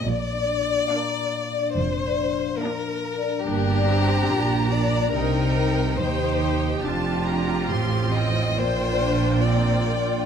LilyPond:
<<
  \new Staff \with { instrumentName = "Violin section" } { \time 4/4 \key bes \major \tempo 4 = 70 r4 f''4 r4 f''4 | bes''2 g''4 g''8 g''8 | a''8 bes''8 c'''8 g''8 g''2 | }
  \new Staff \with { instrumentName = "Violin section" } { \time 4/4 \key bes \major d''2 c''4 bes'4 | g'4. d''8 bes'4 c''4 | g'4. ees''8 c''4 d''4 | }
  \new Staff \with { instrumentName = "Harp" } { \time 4/4 \key bes \major \tuplet 3/2 { <bes, f'>8 d'8 f'8 bes'8 f'8 d'8 f8 d'8 f'8 bes'8 f'8 d'8 } | \tuplet 3/2 { g,8 d'8 g'8 bes'4 d'8 c8 ees'8 g'8 c''8 g'8 ees'8 } | \tuplet 3/2 { f,8 ees'8 f'8 a'8 f'8 ees'8 bes,8 d'8 f'8 bes'8 f'8 d'8 } | }
  \new Staff \with { instrumentName = "Viola section" } { \time 4/4 \key bes \major << { r4 d'4 r4 d'4 | d'2 ees'4 g'4 | f'2 f'2 | } \\ { r4 bes4 r4 bes4 | bes8 c'8 d'8 d'8 ees'4 ees'4 | d'4 c'4 bes8 d'8 c'8 bes8 | } >> }
  \new Staff \with { instrumentName = "Cello section" } { \clef bass \time 4/4 \key bes \major bes,4 r4 f,4 r4 | g,4 bes,4 c4 ees,4 | f,4 a,4 bes,2 | }
  \new Staff \with { instrumentName = "Double bass section" } { \clef bass \time 4/4 \key bes \major bes,,4 r4 f,,4 r4 | g,,4 bes,,4 c,4 ees,4 | f,,4 a,,4 bes,,2 | }
>>